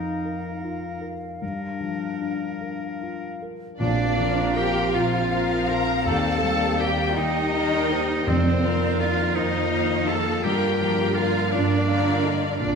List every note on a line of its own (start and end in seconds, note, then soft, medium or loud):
0.00 1.38 F2 soft
0.00 0.10 F3 soft
0.00 0.49 D#4 soft
0.00 1.08 D#4 medium
0.00 1.08 A#4 soft
0.00 3.43 F5 medium
0.25 0.87 A#4 soft
0.62 1.26 F4 soft
1.01 1.41 A#4 soft
1.42 3.76 G2 soft
1.42 3.43 D4 soft
1.42 3.43 A#4 soft
1.80 2.46 F3 soft
2.21 2.86 D4 soft
2.61 3.25 A#4 soft
3.01 3.65 F4 soft
3.42 3.81 A#4 soft
3.79 4.81 A#1 medium
3.79 6.01 A#2 medium
3.79 4.91 A#2 medium
3.79 7.13 C4 medium
3.79 4.53 D4 loud
3.79 4.59 D4 medium
3.79 6.03 F4 medium
3.79 4.52 D5 medium
3.79 7.18 F5 medium
4.17 5.29 F3 medium
4.17 4.79 F3 medium
4.17 5.29 A#4 medium
4.17 5.30 C5 medium
4.17 5.30 F5 medium
4.56 4.95 G4 loud
4.56 4.97 G4 medium
4.56 5.17 A#4 medium
4.56 4.94 G5 medium
4.94 5.92 A#1 medium
4.94 5.54 F4 medium
4.94 5.70 F4 medium
4.94 5.69 F4 medium
4.94 5.69 F5 medium
5.31 6.04 F3 medium
5.31 6.04 A#4 medium
5.31 5.91 C5 soft
5.31 6.04 C5 medium
5.31 6.05 F5 medium
5.69 6.06 F4 medium
5.69 6.05 A#4 medium
5.69 6.06 A#4 medium
5.69 6.06 A#5 medium
6.05 8.22 D#2 medium
6.05 7.03 D#2 medium
6.05 6.40 D#3 medium
6.05 6.40 A#3 medium
6.05 8.23 G4 medium
6.05 6.82 A4 medium
6.05 6.78 A4 medium
6.05 6.41 D5 medium
6.05 6.41 G5 medium
6.05 6.80 A5 medium
6.42 7.50 D#3 medium
6.42 7.01 G3 medium
6.42 7.50 A#3 medium
6.42 7.51 D5 medium
6.42 7.51 G5 medium
6.79 7.16 G4 medium
6.79 7.38 A#4 medium
6.79 7.17 G5 medium
7.16 8.14 D#2 medium
7.16 10.44 A#3 medium
7.16 8.29 D#4 medium
7.16 8.27 D#4 loud
7.16 7.75 G4 medium
7.16 8.27 D#5 medium
7.16 7.56 G5 medium
7.53 8.25 D#3 medium
7.53 8.12 D#4 medium
7.53 8.25 A#4 medium
7.53 8.25 D5 medium
7.53 7.90 D#5 medium
7.53 8.26 G5 medium
7.91 8.27 G4 medium
7.91 8.29 C5 medium
8.27 9.23 F2 medium
8.27 9.32 F2 medium
8.27 10.40 F2 medium
8.27 8.99 C4 medium
8.27 12.44 F4 medium
8.27 9.00 C5 medium
8.27 9.37 D5 medium
8.62 9.69 D#3 medium
8.62 9.22 F3 medium
8.62 9.69 A#4 medium
8.62 9.70 F5 medium
8.99 9.37 F4 medium
8.99 9.36 F4 medium
8.99 9.58 A#4 medium
8.99 9.36 F5 medium
9.35 10.31 F2 medium
9.35 10.10 D#4 medium
9.35 10.08 D#4 loud
9.35 9.94 F4 medium
9.35 10.16 C5 medium
9.35 10.06 D#5 medium
9.71 10.42 D#3 medium
9.71 10.42 A#3 medium
9.71 10.29 D#5 medium
9.71 10.42 F5 medium
10.07 10.44 F4 medium
10.07 10.44 A4 medium
10.07 10.45 A4 medium
10.07 10.43 A5 medium
10.43 11.40 G2 medium
10.43 12.56 G2 medium
10.43 10.80 D3 medium
10.43 12.44 A#3 medium
10.43 11.17 G4 medium
10.43 11.55 A#4 medium
10.43 10.80 A#4 medium
10.43 10.80 D5 medium
10.43 10.80 F5 medium
10.43 11.16 G5 medium
10.81 11.86 D3 medium
10.81 11.39 F3 medium
10.81 11.86 A#4 medium
10.81 11.86 D5 medium
10.81 11.86 F5 medium
11.15 11.53 F4 medium
11.15 11.52 F4 loud
11.15 11.74 A#4 medium
11.15 11.53 F5 medium
11.52 12.47 G2 medium
11.52 12.32 D4 medium
11.52 12.57 D4 loud
11.52 12.10 F4 medium
11.52 12.58 D5 medium
11.52 11.90 D5 medium
11.88 12.58 D3 medium
11.88 12.58 A#4 medium
11.88 12.46 D5 medium
11.88 12.59 D5 medium
11.88 12.25 F5 medium
11.88 12.59 F5 medium
12.24 12.60 F4 medium
12.24 12.58 D#5 medium
12.59 12.75 A#1 medium
12.59 12.75 A#2 medium
12.59 12.75 C4 medium
12.59 12.75 D4 medium
12.59 12.75 F4 medium
12.59 12.75 D5 medium